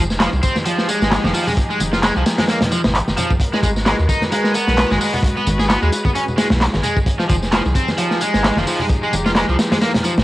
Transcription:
Already playing: F1 F3 D#4 G4 G#4
0.10 snare, tambourine
0.20 F3, snare, clap, closed hi-hat, tambourine
0.32 C2, tambourine, high bongo
0.43 C4, kick, closed hi-hat, tambourine
0.56 snare, tambourine, high conga
0.65 F3, closed hi-hat, tambourine
0.78 snare, tambourine, high bongo
0.89 G#3, closed hi-hat, tambourine
1.01 G#1, snare, tambourine
1.11 snare, clap, closed hi-hat, tambourine, high bongo
1.24 F1 F3, snare, tambourine, high conga
1.34 F3, open hi-hat, tambourine
1.47 G#3, tambourine, low conga
1.57 kick, closed hi-hat, tambourine, high bongo
1.70 G#3, tambourine
1.80 F1, closed hi-hat, tambourine, high conga
1.93 F4, snare, tambourine, high bongo
2.03 G#3, snare, clap, closed hi-hat, tambourine
2.16 C2 F3, tambourine
2.26 snare, closed hi-hat, tambourine
2.38 G#3, snare, closed hi-hat, tambourine, high bongo, high conga
2.48 A#3, snare, closed hi-hat, tambourine
2.61 snare, closed hi-hat, tambourine, low conga
2.72 F3, closed hi-hat, tambourine, high bongo
2.84 G#1, snare, tambourine, low conga
2.95 clap, closed hi-hat, tambourine
3.08 F1, snare, tambourine, high conga
3.17 F3, closed hi-hat, tambourine, high bongo, low conga
3.31 kick, tambourine
3.40 G#3 F#4 A#4 B4, kick, closed hi-hat, tambourine
3.53 G#3, snare, tambourine, high bongo
3.63 G#1 G#3, kick, closed hi-hat, tambourine, high conga
3.76 snare, tambourine
3.86 G#3, snare, clap, closed hi-hat, tambourine
3.99 D#2, tambourine, high bongo
4.09 D#4, kick, closed hi-hat, tambourine
4.22 snare, tambourine, high conga
4.32 G#3, closed hi-hat, tambourine, high bongo
4.44 snare, tambourine
4.54 B3, closed hi-hat, tambourine
4.68 B1, snare, tambourine
4.77 snare, clap, closed hi-hat, tambourine, high bongo
4.91 G#1 G#3, snare, tambourine, high conga
5.01 G#3, open hi-hat, tambourine
5.13 B3, tambourine, high bongo, low conga
5.23 G#4, kick, closed hi-hat, tambourine
5.37 B3, tambourine
5.46 G#1, closed hi-hat, tambourine, high conga
5.59 G#4, snare, tambourine, high bongo
5.69 B3, snare, clap, closed hi-hat, tambourine
5.82 D#2 G#3, tambourine
5.92 closed hi-hat, tambourine, high bongo
6.05 B3, kick, tambourine, high conga
6.15 C#4, closed hi-hat, tambourine
6.28 tambourine, low conga
6.38 G#3, snare, closed hi-hat, tambourine, high bongo
6.50 B1, snare, tambourine, low conga
6.61 snare, clap, closed hi-hat, tambourine
6.73 G#1, snare, tambourine, high bongo, high conga
6.83 G#3, closed hi-hat, tambourine, low conga
6.97 kick, tambourine
7.06 F3 D#4 G4, kick, closed hi-hat, tambourine
7.19 F3, snare, tambourine
7.29 F1 F3, kick, closed hi-hat, tambourine, high bongo, high conga
7.42 snare, tambourine
7.52 F3, snare, clap, closed hi-hat, tambourine
7.65 C2, tambourine, high bongo
7.75 C4, kick, closed hi-hat, tambourine
7.88 snare, tambourine, high conga
7.98 F3, closed hi-hat, tambourine
8.11 snare, tambourine, high bongo
8.21 G#3, closed hi-hat, tambourine
8.34 G#1, snare, tambourine
8.44 snare, clap, closed hi-hat, tambourine, high bongo
8.56 F1 F3, snare, tambourine, high conga
8.67 F3, open hi-hat, tambourine
8.79 G#3, tambourine, low conga
8.89 kick, closed hi-hat, tambourine, high bongo
9.03 G#3, tambourine
9.13 F1, closed hi-hat, tambourine, high conga
9.26 F4, snare, tambourine, high bongo
9.35 G#3, snare, clap, closed hi-hat, tambourine
9.49 C2 F3, tambourine
9.59 snare, closed hi-hat, tambourine
9.72 G#3, snare, closed hi-hat, tambourine, high bongo, high conga
9.81 A#3, snare, closed hi-hat, tambourine
9.94 snare, closed hi-hat, tambourine, low conga
10.04 F3, closed hi-hat, tambourine, high bongo
10.17 G#1, snare, tambourine, low conga

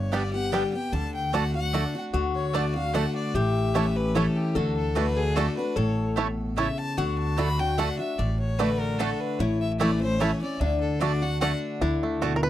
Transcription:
Already playing: G1 G2 C#5
0.12 D3 G3 B3 D4 G4 D5 G5
0.33 B3 G4 F#5
0.52 D3 G3 B3 D4 G4 D5 G5
0.73 B3 G4 G5
0.92 D2 D3 A5
1.15 G5
1.33 D3 A3 D4 F#4 D5 F#5 A5
1.54 D4 F#4 F#5
1.73 D3 A3 D4 F#4 D5 A5
1.95 D4 F#4
2.13 D2 D3 F#4
2.35 C#5
2.53 D3 A3 D4 F#4 D5 A5
2.75 D4 F#4 F5
2.93 D3 A3 D4 F#4 D5 F#5 A5
3.16 D5
3.34 A1 A2 G4 E5
3.74 E3 A3 C#4 E4 C#5 A5
3.96 B4
4.15 E3 A3 C#4 E4 A4 C#5 A5
4.36 G4
4.55 D2 D3 F#4 A4
4.76 A4
4.95 D3 A3 D4 F#4 B4 D5 A5
5.17 G#4
5.35 D3 A3 D4 F#4 A4 D5 A5
5.57 D4 F#4 B4
5.76 A1 A2 A4 C#5
6.16 B2 A3 C#4 E4 C#5 A5
6.57 C#3 A3 C#4 E4 C#5 E5 A5
6.78 A5
6.97 D2 D3 F#4 F#5
7.19 A5
7.37 D3 A3 D4 F#4 D5 A5 B5
7.59 D4 F#4 G5
7.78 D3 A3 D4 F#4 D5 F#5 A5
7.99 D4 F#4 E5
8.19 A1 A2 D5
8.40 C#5
8.59 D3 A3 D4 F#4 B4 D5 A5
8.80 A#4
8.99 D3 A3 D4 F#4 A4 D5 A5
9.20 B4
9.39 A1 A2 E4 C#5
9.61 E5
9.80 E3 A3 C#4 E4 C#5 D5 A5
10.01 C#4 E4 C5
10.20 E3 A3 C#4 E4 C#5 A5
10.41 C#4 E4 D5
10.60 D2 D3 D4 E5
10.81 A4
11.00 D3 A3 D4 F#4 D5 A5
11.22 D4 F#4 F#5
11.41 D3 A3 D4 F#4 D5 F#5 A5
11.81 D2 D3 D4 E4
12.03 A3
12.22 B2 A3 F#4 D5 A5
12.36 A#4
12.43 B4

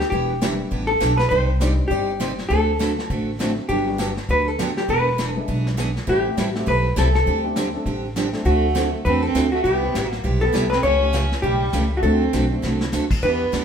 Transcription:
0.01 snare
0.10 E1 E3 B3 D4 G4, brush sweep, kick
0.41 E3 G3 B3 D4 E4 G4, snare, hi-hat pedal
0.71 A1 E3 B3 D4 G4, brush sweep, kick
0.87 A4
1.00 B1 E3 B3 D4 G4, snare, hi-hat pedal
1.17 B4, snare
1.29 C2 C3 G3 C4 D#4 G4 C5 D5, brush sweep, kick
1.60 C3 G3 C4 D4 D#4 G4 D5, snare, hi-hat pedal
1.88 G1 C3 G3 C4 D#4 G4 D5, brush sweep, kick
2.20 C3 G3 C4 D#4 G4 D5, snare, hi-hat pedal
2.38 snare
2.49 D2 D3 A3 C4 F#4 A4, brush sweep, kick
2.79 D3 A3 C4 F#4 A4, snare, hi-hat pedal
2.99 snare
3.10 A1 D3 A3 C4 F#4 A4, brush sweep, kick
3.39 D3 A3 C4 D4 F#4 A4, snare, hi-hat pedal
3.69 G1 D3 F#3 B3 D4 G4, brush sweep, kick
3.87 G3 B3 D4 F#4
3.98 D3 F#3 B3 D4 G4, snare, hi-hat pedal
4.17 snare
4.29 D2 D3 F#3 B3 D4 G4 B4, brush sweep, kick
4.48 A4
4.59 D3 F#3 B3 D4 G4, snare, hi-hat pedal
4.77 G4, snare
4.88 E1 E3 B3 D4 G#4 B4, brush sweep, kick
5.18 E3 B3 D4 G#4, snare, hi-hat pedal
5.32 G#3 B3 A4
5.37 D4 E4
5.48 B1 E3 B3 D4 G#4, brush sweep, kick
5.67 snare
5.77 E3 B3 D4 G#4, snare, hi-hat pedal
5.96 snare
6.07 A1 E3 G3 C4 E4 G4 A4, brush sweep, kick
6.26 A3 C4 E4 G4
6.37 A1 E3 G3 C4 E4 A4, snare, hi-hat pedal
6.52 A3 C4 E4 F#4 G4, snare
6.66 B1 E3 G3 C4 E4 A4 B4, brush sweep, kick
6.96 C2 E3 G3 C4 E4 A4, snare, hi-hat pedal
7.15 A4, snare
7.26 D2 D3 G3 C4 D4 G4, brush sweep, kick
7.44 A3 C4 D4 G4
7.56 D3 G3 C4 D4 G4, snare, hi-hat pedal
7.74 A3 C4 D4 A4
7.86 A1 D3 G3 C4 D4 G4, brush sweep, kick
8.16 D3 G3 C4 D4 G4, snare, hi-hat pedal
8.33 A3 C4 D4 A4, snare
8.45 D2 D3 A3 C4 F#4 A4, brush sweep, kick
8.74 D3 A3 C4 D4 F#4 A4, snare, hi-hat pedal
9.05 E2 D3 A3 C4 F#4 A4 B4, brush sweep, kick
9.22 C4 A4
9.35 D2 D3 A3 C4 F#4 A4, snare, hi-hat pedal
9.52 A3 F#4
9.64 C2 C3 G3 B3 E4 G4, brush sweep, kick
9.81 B3 C4 E4 G4
9.94 A1 C3 G3 B3 E4 G4, snare, hi-hat pedal
10.04 A#3 F#4
10.12 snare
10.24 B1 C3 G3 B3 E4 G4, brush sweep, kick
10.41 B3 A4
10.53 C2 C3 G3 B3 E4 G4, snare, hi-hat pedal
10.70 C4 B4, snare
10.83 C#2 C#3 E3 A3 C#4 G4 C#5, brush sweep, kick
11.02 A3 C#4 E4 G4
11.13 C#3 E3 A3 C#4 G4, snare, hi-hat pedal
11.32 snare
11.42 B1 C#3 E3 G3 A3 C#4 G4, brush sweep, kick
11.73 C#2 C#3 E3 A3 C#4 G4, snare, hi-hat pedal
11.96 A3 F#4
12.02 D2 D3 A3 C4 D4 F#4 A4, brush sweep, kick
12.33 B1 D3 A3 C4 F#4 A4, snare, hi-hat pedal
12.50 A3 C4 D4 F#4
12.62 C2 D3 A3 C4 F#4 A4, snare
12.81 snare
12.92 D2 D3 A3 C4 F#4 A4, snare, hi-hat pedal
13.11 kick, crash
13.22 E2 E3 B3 D4 E4 G4 B4, brush sweep, kick
13.52 D2 E3 B3 D4 G4, snare, hi-hat pedal

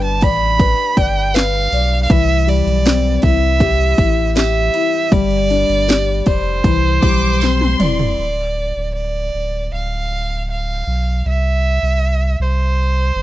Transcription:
Already playing: G1 G3 D4 B4
0.04 A5
0.21 A1 D5 B5, kick, ride
0.59 B4, kick, ride
0.97 G1 D5 G5, kick, ride
1.34 B4 F5, snare, ride, tambourine
1.72 B1 D5, ride
2.03 F5
2.10 C2 E3 E5, kick, ride
2.47 G3 D5, ride
2.66 B1, ride
2.85 C4, snare, ride, tambourine
3.22 C2 E4 E5, kick, ride
3.60 G4, kick, ride
3.98 A1 E4, kick, ride
4.35 G4 E5, snare, ride, tambourine
4.74 E4, ride
5.12 G1 G3 D5, kick, ride
5.31 ride
5.50 D4, ride
5.69 G1, ride
5.88 G4, snare, ride, tambourine
6.26 F1 C5 D5, kick, ride
6.64 C2 E3, kick, ride
7.03 B1 G3 D6, kick, ride
7.41 C4 C6, snare, ride, tambourine
7.61 high tom
7.80 E1 E4 D5, mid tom, ride
7.99 floor tom
8.18 D1
8.76 D1
8.96 D5
9.34 D1
9.72 D1 F5
10.51 F5
10.87 B1
11.26 C2 E5
11.83 C2
12.39 C2 C5
13.15 G1

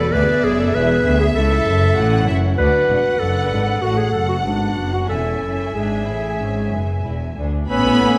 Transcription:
Already playing: E1 E2 A3 F#4 B4 D5
0.00 A4
0.13 D2 B3 G#4 B4 D5 E5
0.44 F#1 F#2 G#4
0.60 A4
0.74 E1 E2 B3 B4 E5
1.05 D2
1.20 G#4
1.35 C#2 E4 A4 E5
1.66 F#1 F#2
1.96 A1 A2 C#4 E4 F#5
2.27 F#1 F#2 E5
2.58 D2 D4 F#4 B4 D5 F#5
2.89 E1 E2 F#5
3.19 F#1 F#2 D4 A4 B4
3.50 G#1 G#2
3.82 A1 A2 A3 F#4 A4 F#5
3.97 G#4
4.12 F#1 F#2 A4
4.29 F#4
4.44 G#1 G#2 B3 D4 F#4
4.76 F#1 F#2
4.93 F#4
5.09 E1 E2 C#4 E4 A4 E5 G#5
5.42 F#1 F#2
5.75 G#1 G#2 D4 G#4
6.07 A1 A2 E4
6.40 G#1 G#2 C#4
6.72 F#1 F#2 B3
7.04 E1 E2 E4
7.37 D2 D4
7.69 A1 A3 B3 C#4 E4 B4 G#5 B5 E6
7.85 A1 A3
8.01 A1 E3

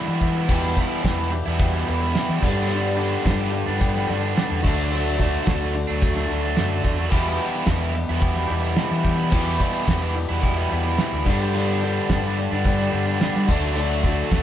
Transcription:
Already playing: E2 B2 E3 G3 E4 G4
0.08 E3 G3 B3 E4
0.21 E3 G3 E4 G4, kick
0.36 G3 B3 E4
0.47 E2 B2 E3 G3 E4 G4, kick, closed hi-hat
0.52 B3 E4
0.74 E3 G3 E4 G4, kick
0.78 G3 B3 E4
1.01 E2 E3 G3 E4 G4, kick
1.05 B3 E4, snare, closed hi-hat
1.17 G3 B3 E4
1.31 E3 G3 E4 G4, muted overdriven electric guitar stroke
1.46 E2 G3 B3 E4
1.59 E2 B2 E3 G3 E4 G4, kick, closed hi-hat
1.73 G3 B3 E4
1.86 E2 E3 G3 B3 E4 G4
1.91 E4
2.01 B3 E4
2.05 G3
2.15 E3 G3 B3 E4 G4, snare, closed hi-hat
2.29 E3 B3 E4
2.34 G3
2.41 G2 D3 G3 B3 D4 G4, kick
2.45 B3 D4
2.57 G3 B3 D4
2.67 G2 D3 G3 B3 D4 G4, closed hi-hat
2.71 D3 G3 B3 D4
2.96 D3 G3 B3 D4 G4
3.00 B3 D4
3.22 G2 D3 G3 B3 D4 G4, kick
3.26 G3 B3 D4, snare, closed hi-hat
3.38 G3 B3 D4
3.51 G3 B3 D4 G4, muted overdriven electric guitar stroke
3.66 G2 G3 B3 D4
3.79 G2 D3 G3 B3 D4 G4, kick, closed hi-hat
3.94 G3 B3 D4, snare
4.06 G2 D3 G3 B3 D4 G4, snare
4.20 G3 B3 D4
4.33 G2 D3 G3 B3 D4 G4
4.37 D4, snare, closed hi-hat
4.48 E2 G3 B3 D4
4.62 D2 D3 F#3 A3 D4 F#4, kick
4.75 A3 D4
4.79 F#3
4.88 D3 F#3 A3
4.92 D4 F#4, closed hi-hat
5.17 D3 F#3 A3 D4 F#4, kick
5.45 D2 D3 F#3 A3 D4 F#4, kick, snare, closed hi-hat
5.60 F#3 A3 D4
5.74 A3 D4 F#4, muted overdriven electric guitar stroke
5.87 D2 F#3 A3 D4
6.01 D3 A3 D4 F#4, kick, closed hi-hat
6.15 F#3 A3 D4, snare
6.27 D2 D3 F#3 A3 D4 F#4
6.32 D4
6.42 F#3 A3 D4
6.55 D3 F#3 A3 D4 F#4, snare, closed hi-hat
6.59 F#2 D4
6.69 F#3 A3 D4
6.82 E2 A3 D4 F#4, kick
6.97 F#3 A3 D4
7.09 E2 B2 E3 G3 B3 G4, kick, closed hi-hat
7.13 B3 E4
7.38 E3 G3 B3 G4
7.42 E4
7.65 E2 E3 G3 B3 G4, kick, snare, closed hi-hat
7.70 E4
7.80 G3 B3 E4
7.93 E3 G3 B3 G4, muted overdriven electric guitar stroke
8.09 E2 G3 B3 E4
8.19 E2 B2 E3 G3 B3 G4, kick, closed hi-hat
8.35 G3 B3 E4, snare
8.46 E2 E3 G3 B3 G4
8.51 B3 E4
8.62 G3 B3 E4
8.74 E3 G3 B3 G4, snare, closed hi-hat
8.79 B3 E4
8.90 E3 G3 B3 E4
9.03 E3 G3 B3 G4, kick
9.17 B3 E4
9.21 G3
9.30 E2 B2 E3 G3 B3 G4, kick, closed hi-hat
9.34 E4
9.58 E3 G3 B3 G4, kick
9.62 E4
9.86 E2 E3 G3 B3 E4 G4, kick, snare, closed hi-hat
10.01 G3 B3 E4
10.14 E3 G3 B3 G4, muted overdriven electric guitar stroke
10.29 E2 G3 B3 E4
10.40 E2 B2 E3 G3 B3 G4, kick, closed hi-hat
10.56 G3 B3 E4
10.69 E2 E3 G3 B3 G4
10.74 E4
10.84 B3 E4
10.88 G3
10.97 E3 G3 B3 G4, snare, closed hi-hat
11.01 B3 E4
11.12 D2 G3 B3 E4
11.25 G2 D3 G3 B3 D4 G4, kick
11.39 G3 B3 D4
11.53 G2 D3 G3 B3 D4 G4, closed hi-hat
11.81 D3 G3 B3 D4 G4
12.09 G2 D3 G3 B3 D4 G4, kick, snare, closed hi-hat
12.23 G3 B3 D4
12.38 G3 B3 D4 G4, muted overdriven electric guitar stroke
12.51 G2 G3 B3 D4
12.64 G2 D3 G3 B3 D4 G4, kick, closed hi-hat
12.78 G3 B3 D4
12.90 G2 D3 G3 B3 D4 G4
12.94 G3 B3 D4
13.06 B3 D4
13.11 G3
13.19 G2 D3 G3 B3 D4 G4, snare, closed hi-hat
13.23 D4
13.34 G3 B3 D4
13.46 D2 D3 F#3 A3 D4 F#4, kick
13.51 A3 D4
13.61 F#3 A3 D4
13.74 D3 F#3 A3 D4 F#4, closed hi-hat
14.02 D3 F#3 A3 D4 F#4, kick
14.30 D2 D3 F#3 A3 D4 F#4, kick, snare, closed hi-hat

